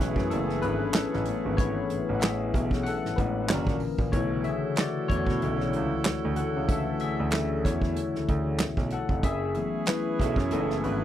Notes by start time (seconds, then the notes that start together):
Already playing: C#4 E4 G#4 B4 E5
0.00 B1 E3 F#3 A3 B3, snare, closed hi-hat
0.16 F#2, kick, snare
0.25 G#4
0.30 F#1 C#4 A4, closed hi-hat
0.49 snare
0.62 G#1 D4 B4, closed hi-hat
0.93 C#4 A4, snare, clap, closed hi-hat
0.97 A1
1.13 A1, snare
1.25 E3 A3 B3, closed hi-hat
1.45 G#1
1.57 E3 A3 B3 E4 C#5, kick, closed hi-hat
1.90 A1, closed hi-hat
2.09 A1
2.15 F#5
2.20 G#4 E5, snare, clap, closed hi-hat
2.54 B1, kick, closed hi-hat
2.71 kick, snare
2.83 F#5, closed hi-hat
2.87 A4
3.05 A1, snare
3.16 A1 E3 G#3 A3 B3 B4, kick, closed hi-hat
3.21 D4
3.48 F#1 D3 E3 F#3 A#3 C#4 D4 F#4 A#4, snare, clap, closed hi-hat
3.67 A#1, kick, snare
3.80 open hi-hat
3.98 A#1, kick
4.12 B1 C#3 D3 E3 A3 E4 F#4 A4 C#5, kick, closed hi-hat
4.16 E4
4.44 E5, closed hi-hat
4.48 G#4
4.76 D5, snare, clap, closed hi-hat
4.80 F#4
5.08 E2 D3 E3 A3 C#4 E4 C#5, kick, closed hi-hat
5.26 B2, kick, snare
5.42 B1, closed hi-hat
5.60 snare
5.73 C#2, closed hi-hat
6.04 D2, snare, clap, closed hi-hat
6.25 D2
6.36 A4 F#5, closed hi-hat
6.56 C#2
6.68 D3 E3 A3 C#4 A4 E5, kick, closed hi-hat
7.00 D2 E5, closed hi-hat
7.04 G#4
7.20 D2
7.31 snare, clap, closed hi-hat
7.65 E2 E4 C#5, kick, snare, closed hi-hat
7.82 kick, snare
7.97 closed hi-hat
8.15 D2, snare
8.29 D2, kick, closed hi-hat
8.58 B1, snare, clap, closed hi-hat
8.77 B1, kick, snare
8.90 A4 F#5, closed hi-hat
9.09 F1, kick
9.23 F#1 C#4 E4 G#4 E5, kick, closed hi-hat
9.55 E3 F#3 A3 B3, closed hi-hat
9.86 E4 B4, muted clean electric guitar stroke, snare, clap, closed hi-hat
10.19 B1 B3 E4 A4, kick, snare, closed hi-hat
10.36 F#2, kick, snare
10.51 F#1 E3 A3 B3 C#4 E4 G#4 A4, closed hi-hat
10.70 snare
10.84 G#1 D4 B4, closed hi-hat